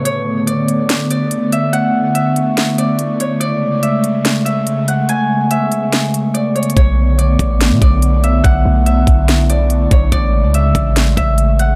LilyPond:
<<
  \new Staff \with { instrumentName = "Harp" } { \time 4/4 \key b \dorian \tempo 4 = 143 cis''4 d''4. d''4 e''8 | fis''4 e''4. d''4 cis''8 | d''4 e''4. e''4 fis''8 | gis''4 e''2 d''8 cis''8 |
cis''4 d''4. d''4 e''8 | fis''4 e''4. d''4 cis''8 | d''4 e''4. e''4 fis''8 | }
  \new Staff \with { instrumentName = "Synth texture" } { \time 4/4 \key b \dorian << { cis'''1~ | cis'''1~ | cis'''1~ | cis'''1~ |
cis'''1~ | cis'''1 | cis'''1 | } \\ { <a d' e'>1~ | <a d' e'>1 | <b gis'>1~ | <b gis'>1 |
<a d' e'>1~ | <a d' e'>1 | <b gis'>1 | } >> }
  \new Staff \with { instrumentName = "Analog synth pad" } { \clef bass \time 4/4 \key b \dorian <d a b>1~ | <d a b>1 | <cis gis a>1~ | <cis gis a>1 |
<d a b>1~ | <d a b>1 | <cis gis>1 | }
  \new Staff \with { instrumentName = "808-style bass" } { \clef bass \time 4/4 \key b \dorian r1 | r1 | r1 | r1 |
b,,4. a,,8. b,16 b,,4. | b,,8 b,,4 b,,2 b,,8 | a,,8. cis,8. a,,4 a,,4. | }
  \new DrumStaff \with { instrumentName = "Drums" } \drummode { \time 4/4 hh4 hh8 hh8 <hh sn>8 hh8 hh8 hh8 | hh4 hh8 hh8 <hh sn>8 hh8 hh8 hh8 | hh4 hh8 hh8 <hh sn>8 hh8 hh8 hh8 | hh4 hh8 hh8 <hh sn>8 hh8 \tuplet 3/2 { hh16 r16 r16 hh16 hh16 hh16 } |
<hh bd>4 hh8 <hh bd>8 <hh sn>8 <hh bd>8 hh8 hh8 | <hh bd>4 hh8 <hh bd>8 <hh sn>8 hh8 hh8 <hh bd>8 | <hh bd>4 hh8 <hh bd>8 <hh sn>8 <hh bd>8 hh8 hh8 | }
>>